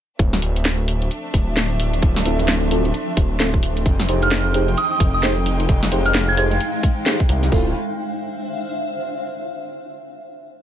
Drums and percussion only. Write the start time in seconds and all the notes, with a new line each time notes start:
0.19 kick, closed hi-hat
0.33 snare
0.42 open hi-hat
0.56 closed hi-hat
0.65 snare, closed hi-hat
0.88 open hi-hat
1.02 closed hi-hat
1.11 closed hi-hat
1.34 kick, open hi-hat
1.57 snare, closed hi-hat
1.80 open hi-hat
1.93 closed hi-hat
2.02 kick, closed hi-hat
2.16 snare
2.25 open hi-hat
2.39 closed hi-hat
2.48 snare, closed hi-hat
2.71 open hi-hat
2.85 closed hi-hat
2.94 closed hi-hat
3.17 kick, open hi-hat
3.40 snare, closed hi-hat
3.54 kick
3.63 open hi-hat
3.77 closed hi-hat
3.86 kick, closed hi-hat
4.00 snare
4.09 open hi-hat
4.22 closed hi-hat
4.32 snare, closed hi-hat
4.54 open hi-hat
4.68 closed hi-hat
4.77 closed hi-hat
5.00 kick, open hi-hat
5.23 snare, closed hi-hat
5.46 open hi-hat
5.60 closed hi-hat
5.69 kick, closed hi-hat
5.83 snare
5.92 open hi-hat
6.06 closed hi-hat
6.15 snare, closed hi-hat
6.37 open hi-hat
6.51 closed hi-hat
6.60 closed hi-hat
6.83 kick, open hi-hat
7.06 snare, closed hi-hat
7.20 kick
7.29 open hi-hat
7.43 snare, closed hi-hat
7.52 kick, open hi-hat